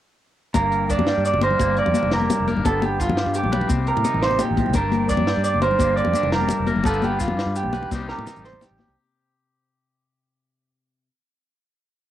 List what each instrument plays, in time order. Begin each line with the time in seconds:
0.54 fingered electric bass G1, clean electric guitar G2 A#3 A#4, kick, closed hi-hat, muted conga, maracas
0.72 closed hi-hat
0.89 clean electric guitar D4 D5, kick, closed hi-hat, low conga, maracas
0.99 fingered electric bass G2, muted conga, high conga, low conga
1.07 clean electric guitar G3, snare, closed hi-hat
1.16 fingered electric bass G2, low conga
1.25 clean electric guitar D5, closed hi-hat, maracas
1.34 fingered electric bass G1, high conga
1.41 clean electric guitar A#4 C5, closed hi-hat, muted conga
1.51 low conga
1.59 fingered electric bass G1, clean electric guitar G2 A#3, kick, closed hi-hat, high conga, maracas
1.77 clean electric guitar D5, closed hi-hat
1.86 fingered electric bass F2, muted conga
1.94 clean electric guitar D4, closed hi-hat, high conga, maracas
2.03 fingered electric bass F1, low conga
2.11 clean electric guitar G3 A#4, snare, closed hi-hat
2.21 high conga
2.29 closed hi-hat, muted conga, low conga, maracas
2.40 fingered electric bass F1, low conga
2.47 clean electric guitar A#4, closed hi-hat, high conga
2.57 fingered electric bass G1, low conga
2.64 fingered electric bass G1, clean electric guitar G2 B3 A4, kick, closed hi-hat, muted conga, maracas
2.82 clean electric guitar G4, closed hi-hat, high conga
3.00 clean electric guitar F4, kick, snare, closed hi-hat, maracas
3.09 fingered electric bass G2, muted conga, high conga, low conga
3.17 clean electric guitar G3, snare, closed hi-hat
3.26 fingered electric bass G2, low conga
3.34 clean electric guitar G4, closed hi-hat, maracas
3.44 fingered electric bass B1, high conga
3.52 clean electric guitar B4, closed hi-hat, muted conga
3.61 low conga
3.68 fingered electric bass C2, clean electric guitar C3 C4, kick, closed hi-hat, high conga, maracas
3.87 clean electric guitar A#4, closed hi-hat
3.97 fingered electric bass A2, muted conga
4.04 clean electric guitar D#4, closed hi-hat, high conga, maracas
4.14 fingered electric bass A1, low conga
4.22 clean electric guitar C3 C5, snare, closed hi-hat
4.31 high conga
4.39 clean electric guitar A#2 G4, closed hi-hat, muted conga, low conga, maracas
4.48 fingered electric bass A1, low conga
4.57 clean electric guitar A2, kick, closed hi-hat, high conga
4.66 fingered electric bass C2, low conga
4.74 fingered electric bass G1, clean electric guitar G2 G3 D4 A#4, muted clean electric guitar stroke, kick, closed hi-hat, muted conga, maracas
4.92 closed hi-hat, high conga
5.09 clean electric guitar D4 D5, kick, snare, closed hi-hat, low conga, maracas
5.17 fingered electric bass G2, muted conga, high conga, low conga
5.27 clean electric guitar G3, snare, closed hi-hat
5.36 fingered electric bass G2, low conga
5.44 clean electric guitar D5, closed hi-hat, maracas
5.54 fingered electric bass G1, high conga
5.62 clean electric guitar A#4 C5, closed hi-hat, muted conga
5.71 low conga
5.79 fingered electric bass G1, clean electric guitar G2 A#3, kick, closed hi-hat, high conga, maracas
5.97 clean electric guitar D5, closed hi-hat
6.05 fingered electric bass F2, muted conga
6.14 clean electric guitar D4, closed hi-hat, high conga, maracas
6.23 fingered electric bass F1, low conga
6.33 clean electric guitar G3 A#4, snare, closed hi-hat
6.41 high conga
6.49 closed hi-hat, muted conga, low conga, maracas
6.59 fingered electric bass F1, low conga
6.67 clean electric guitar A#4, closed hi-hat, high conga
6.76 fingered electric bass G1, low conga
6.84 fingered electric bass G1, clean electric guitar G2 G3 B3 F4 A4 B4, kick, closed hi-hat, muted conga, maracas
6.93 maracas
7.02 clean electric guitar G4, closed hi-hat, high conga
7.19 clean electric guitar F4, kick, snare, closed hi-hat, maracas
7.28 fingered electric bass G2, muted conga, high conga, low conga
7.37 clean electric guitar G3, snare, closed hi-hat, low conga
7.46 fingered electric bass G2
7.56 clean electric guitar G4, closed hi-hat, maracas
7.63 fingered electric bass B1, high conga
7.73 clean electric guitar B4, closed hi-hat, muted conga, low conga
7.83 low conga
7.91 fingered electric bass C2, clean electric guitar C3 G3 C4 D#4 G4, kick, snare, high conga, maracas
8.09 clean electric guitar A#4, snare
8.18 fingered electric bass A2, muted conga
8.26 clean electric guitar D#4, snare, high conga, low conga, maracas
8.36 fingered electric bass A1, low conga, maracas
8.41 clean electric guitar G3 C5, snare, low conga, maracas
8.53 high conga, low conga
8.61 clean electric guitar G4, snare, muted conga, maracas
8.71 fingered electric bass A1, low conga
8.79 clean electric guitar G4, snare, high conga, low conga, maracas
8.88 fingered electric bass C2, low conga